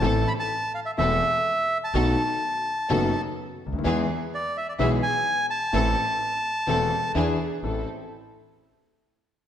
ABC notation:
X:1
M:4/4
L:1/16
Q:1/4=126
K:Am
V:1 name="Bandoneon"
a2 b a3 f e e6- e a- | a8- a3 z4 z | z4 d2 e d e2 ^g4 a2- | a12 z4 |
z16 |]
V:2 name="String section"
[CEA]2 z6 [CEA]2 z6 | [B,^DA]2 z6 [B,DA]2 z6 | [B,E^G]2 z6 [B,EG]2 z6 | [CEA]2 z6 [CEA]2 z2 [DE^G]2 z2 |
[CEA]2 z12 z2 |]
V:3 name="Grand piano" clef=bass
[A,,,A,,E,A,CA]2 z6 [E,,,E,,E,A,CA]2 z6 | [B,,,B,,^D,A,B,^F]2 z6 [^F,,,^F,,D,A,B,F]2 z4 z/2 ^C,,/2 =D,,/2 ^D,,/2 | [E,,E,^G,B,^G]2 z6 [B,,,B,,E,G,B,G]2 z6 | [A,,,A,,E,A,CA]2 z6 [E,,,E,,E,A,CA]2 z2 [E,,E,B,D^G]2 z2 |
[A,,,CEA]2 z12 z2 |]
V:4 name="Upright bass" clef=bass
A,,,3/2 z6 z/2 E,,,3/2 z6 z/2 | B,,,3/2 z6 z/2 ^F,,,3/2 z4 z ^C,,/2 D,,/2 ^D,,/2 | E,,3/2 z6 z/2 B,,,3/2 z6 z/2 | A,,,3/2 z6 z/2 E,,,3/2 z2 z/2 E,,3/2 z2 z/2 |
A,,,2 z12 z2 |]